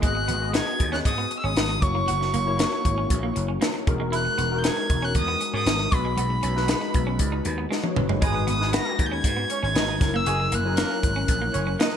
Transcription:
0.02 G#1 G#3 B3 F#4 G#4 D#5 F#6, kick, closed hi-hat
0.15 muted clean electric guitar stroke
0.28 G#1 B3, closed hi-hat
0.41 B3 F#4 G#4 D#5
0.54 B3 G#6, snare, closed hi-hat
0.66 muted clean electric guitar stroke
0.80 D#2, kick, closed hi-hat
0.92 C#4 F#6, snare
1.05 G#2 D#6, kick, closed hi-hat
1.18 B3
1.31 muted clean electric guitar stroke, closed hi-hat
1.39 E6
1.44 G#1 C#4 D#6
1.56 G#1 B3, snare, closed hi-hat
1.69 muted clean electric guitar stroke
1.81 F#1 A#3 E4 F#4 C#5 C#6, kick, closed hi-hat
1.95 A#3
2.08 F#1 F#4, closed hi-hat
2.21 muted clean electric guitar stroke, snare
2.34 F#1 A#3, closed hi-hat
2.46 A#3 E4 F#4 C#5
2.59 A#3, snare, closed hi-hat
2.72 muted clean electric guitar stroke
2.85 G#1, kick, closed hi-hat
2.98 C#4
3.10 A#1, kick, closed hi-hat
3.23 A#3
3.36 F#1, muted clean electric guitar stroke, closed hi-hat
3.48 C#4
3.61 A#3, snare, closed hi-hat
3.74 muted clean electric guitar stroke
3.87 E1 G#3 D#4 F#4 A#4, kick, closed hi-hat
4.00 G#3
4.12 E4 F#6, closed hi-hat
4.25 muted clean electric guitar stroke
4.38 E1 B3, closed hi-hat
4.50 G#3 D#4 F#4 A#4
4.59 G6
4.64 B3 G#6, snare, closed hi-hat
4.77 muted clean electric guitar stroke
4.90 E1, kick, closed hi-hat
5.02 C#4 F#6
5.15 E2 D#6, kick, closed hi-hat
5.28 B3
5.41 muted clean electric guitar stroke, closed hi-hat
5.54 G#2 C#4 D#6
5.66 G#1 B3, snare, closed hi-hat
5.79 muted clean electric guitar stroke
5.91 B1 G#3 D4 F#4 B4 B5, kick, closed hi-hat
5.98 D#4
6.05 G#3
6.17 B1 B3, closed hi-hat
6.30 muted clean electric guitar stroke
6.43 B1 C#4, closed hi-hat
6.55 G#3 D#4 F#4 B4, snare
6.68 B3, snare, closed hi-hat
6.81 muted clean electric guitar stroke
6.94 B1, kick, closed hi-hat
7.07 C#4
7.19 C#2, kick, closed hi-hat
7.32 D#4
7.45 D#2, muted clean electric guitar stroke, closed hi-hat
7.58 B3
7.71 G#3 F#4 D#5, snare
7.84 C#5, muted clean electric guitar stroke, high tom
7.96 F#1 D#4 B4, mid tom
8.09 G#3 B3 G#4, floor tom
8.21 G#1 G#3 D#4 F#4 G#4 B4 D#6, kick, closed hi-hat
8.35 muted clean electric guitar stroke
8.47 G#1 B3 D#6, closed hi-hat
8.59 G#3 D#4 F#4 G#4 B4, snare
8.73 B3 B4 A#6, snare, closed hi-hat
8.86 muted clean electric guitar stroke
8.99 D#2, kick, closed hi-hat
9.06 G6
9.12 C#4 G#6
9.24 G#2, kick, closed hi-hat
9.37 B3
9.50 C#4 C#5, muted clean electric guitar stroke, closed hi-hat
9.63 G#1 C#4 G#6
9.75 G#1 B3 D#4 D#5, snare, closed hi-hat
9.88 muted clean electric guitar stroke
10.00 F#1 F#3 C#4 E4 A#4, kick, snare, closed hi-hat
10.14 A#3 E6
10.26 F#1 G#3 F#4 G#4, closed hi-hat
10.40 muted clean electric guitar stroke
10.52 F#1 A#3 F#6, closed hi-hat
10.64 F#3 G#3 C#4 E4 G#4 A#4
10.77 A#3 A#4, snare, closed hi-hat
10.91 muted clean electric guitar stroke
11.03 G#1, kick, closed hi-hat
11.16 C#4
11.28 A#1, kick, closed hi-hat
11.42 A#3
11.54 F#1 C#4 C#5, muted clean electric guitar stroke, closed hi-hat
11.67 C#4
11.79 A#3 D#4 D#5, snare, closed hi-hat
11.93 muted clean electric guitar stroke

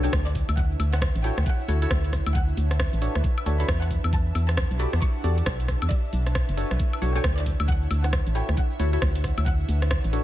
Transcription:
Already playing: D4 E4 B4 C#5 E5 A5, impact
0.04 D4 F#4 A4 C#5 G5, closed hi-hat, shaker
0.13 D2, kick, cross-stick, shaker
0.27 D5, cross-stick, closed hi-hat, shaker
0.35 kick, open hi-hat, shaker
0.49 D2, closed hi-hat, high woodblock, shaker
0.57 F#5, kick, closed hi-hat, shaker
0.71 shaker
0.78 D2 E5 F#5, open hi-hat, high woodblock, shaker
0.93 F#5, cross-stick, closed hi-hat, shaker
1.02 kick, cross-stick, shaker
1.15 A1, closed hi-hat, shaker
1.24 E4 F#4 A4 C#5 G5, open hi-hat, shaker
1.38 D2, cross-stick, shaker
1.46 F#5, kick, closed hi-hat, shaker
1.60 shaker
1.68 D2 E4 F#4 A4 C#5, open hi-hat, shaker
1.82 E4 F#4 A4 C#5, closed hi-hat, shaker
1.91 D2, kick, cross-stick, shaker
2.04 closed hi-hat, shaker
2.13 kick, cross-stick, open hi-hat, shaker
2.26 D2, closed hi-hat, high woodblock, shaker
2.35 F#5, kick, closed hi-hat, shaker
2.42 B4 A5
2.49 shaker
2.57 D2, open hi-hat, shaker
2.71 cross-stick, closed hi-hat, shaker
2.80 kick, cross-stick, shaker
2.93 A1, closed hi-hat, shaker
3.02 D4 F#4 A4 C#5, open hi-hat, shaker
3.15 D2, cross-stick, shaker
3.24 kick, closed hi-hat, shaker
3.38 high woodblock, shaker
3.46 D2 D4 F#4 A4 C#5, open hi-hat, shaker
3.60 D4 F#4 A4 C#5 B5, closed hi-hat, shaker
3.68 E2, kick, cross-stick, shaker
3.82 F#5, cross-stick, closed hi-hat, shaker
3.91 kick, open hi-hat, shaker
4.04 E2, closed hi-hat, high woodblock, shaker
4.11 F#5 A5, kick, closed hi-hat, shaker
4.22 G4
4.27 shaker
4.35 E2, open hi-hat, high woodblock, shaker
4.49 A5, cross-stick, closed hi-hat, shaker
4.57 kick, cross-stick, shaker
4.71 B1, closed hi-hat, shaker
4.80 F#4 G4 A4 D5 B5, open hi-hat, shaker
4.93 E2, cross-stick, shaker
5.02 C#6, kick, closed hi-hat, shaker
5.16 shaker
5.24 E2 F#4 G4 A4 D5, open hi-hat, shaker
5.38 closed hi-hat, shaker
5.46 B1, kick, cross-stick, shaker
5.60 closed hi-hat, shaker
5.68 kick, cross-stick, open hi-hat, shaker
5.82 E2, closed hi-hat, high woodblock, shaker
5.91 E4 D5 E5, kick, closed hi-hat, shaker
5.99 C#5
6.04 B4, shaker
6.13 B1, open hi-hat, shaker
6.26 cross-stick, closed hi-hat, shaker
6.35 kick, cross-stick, shaker
6.49 F#1, closed hi-hat, shaker
6.57 D4 F#4 A4 C#5, open hi-hat, shaker
6.71 B1, cross-stick, shaker
6.80 kick, closed hi-hat, shaker
6.93 high woodblock, shaker
7.02 B1 D4 F#4 A4 C#5, open hi-hat, shaker
7.15 D4 F#4 A4 C#5 G5, closed hi-hat, shaker
7.24 D2, kick, cross-stick, shaker
7.38 D5, cross-stick, closed hi-hat, shaker
7.46 kick, open hi-hat, shaker
7.60 D2 E5, closed hi-hat, high woodblock, shaker
7.68 F#5, kick, closed hi-hat, shaker
7.82 shaker
7.91 D2, open hi-hat, high woodblock, shaker
8.04 F#5, cross-stick, closed hi-hat, shaker
8.13 kick, cross-stick, shaker
8.27 A1 F#5, closed hi-hat, shaker
8.35 E4 F#4 A4 C#5 G5, open hi-hat, shaker
8.49 D2, cross-stick, shaker
8.57 F#5, kick, closed hi-hat, shaker
8.71 shaker
8.80 D2 E4 F#4 A4 C#5, open hi-hat, shaker
8.93 E4 F#4 A4 C#5, closed hi-hat, shaker
9.02 D2, kick, cross-stick, shaker
9.15 closed hi-hat, shaker
9.24 kick, cross-stick, open hi-hat, shaker
9.38 D2, closed hi-hat, high woodblock, shaker
9.45 B4 F#5, kick, closed hi-hat, shaker
9.60 shaker
9.69 D2, open hi-hat, shaker
9.82 cross-stick, closed hi-hat, shaker
9.91 kick, cross-stick, shaker
10.04 A1 A5, closed hi-hat, shaker
10.13 D4 F#4 A4 C#5, open hi-hat, shaker

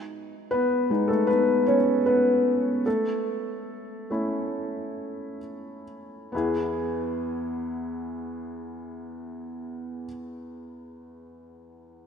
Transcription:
Already playing: B3 D#4 G#4
0.51 B3 B4
0.90 G#3 B3 D#4
1.08 A3 A4
1.27 B3 B4
1.66 C#4 C#5
2.06 B3 B4
2.86 A3 A4
4.10 A3 C#4 E4
6.32 E2 B3 E4
6.36 G#4

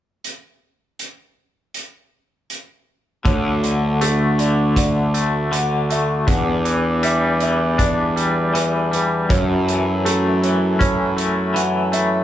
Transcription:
0.24 closed hi-hat
0.99 closed hi-hat
1.74 closed hi-hat
2.50 closed hi-hat
3.25 D2 D3 D4 F#4 C#5, kick, closed hi-hat
3.64 D3, closed hi-hat
4.01 A3 A4, closed hi-hat
4.38 D3 D5, closed hi-hat
4.76 D5, kick, closed hi-hat
5.14 A3, closed hi-hat
5.52 D3 F#5, closed hi-hat
5.90 A3 E5, closed hi-hat
6.27 E2 E3 D4 G4 F#5, kick, closed hi-hat
6.65 E3, closed hi-hat
7.03 G3 E5, closed hi-hat
7.40 E3 E5, closed hi-hat
7.78 D4 D5, kick, closed hi-hat
8.16 G3, closed hi-hat
8.54 E3 B4, closed hi-hat
8.91 G3 B4, closed hi-hat
9.29 F#2 F#3 E4 A4 C#5, kick, closed hi-hat
9.67 E3, closed hi-hat
10.05 A3 A4, closed hi-hat
10.43 E3 C#5, closed hi-hat
10.79 C#4 C#5, kick, closed hi-hat
11.17 A3, closed hi-hat
11.54 E3 F#5, closed hi-hat
11.92 A3 E5, closed hi-hat

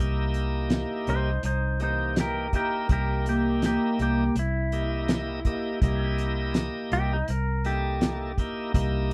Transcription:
Already playing: C2 A#3 D#4 E4 G4
0.34 closed hi-hat
0.70 snare, closed hi-hat
1.07 C2 D#4 C5, closed hi-hat
1.43 C2 D#4 C5, closed hi-hat
1.80 E3 A#3 D#4 G4, closed hi-hat
1.84 C5
2.16 G4, snare, closed hi-hat
2.21 A#4
2.53 A#3 D#4 E4 G4 A#4, kick, closed hi-hat
2.89 C2 A#3 D#4 E4 G4 A#4, kick, closed hi-hat
3.26 A#3 G4, closed hi-hat
3.62 A#3 G4, snare, closed hi-hat
3.99 C2 A#3 G4, closed hi-hat
4.35 C2 E4, closed hi-hat
4.72 A#3 E4 G4 D#5, closed hi-hat
5.08 snare, closed hi-hat
5.45 A#3 E4 G4 D#5, kick, closed hi-hat
5.82 C2 A#3 E4 G4 D#5, kick, closed hi-hat
6.18 closed hi-hat
6.54 snare, closed hi-hat
6.92 C2 G4, closed hi-hat
7.13 D#4
7.28 C2 A#4, closed hi-hat
7.64 A#3 D#4 E4 G4 A4, closed hi-hat
8.01 snare, closed hi-hat
8.38 A#3 D#4 E4 G4, kick, closed hi-hat
8.74 C2 A#3 D#4 E4 G4, kick, closed hi-hat

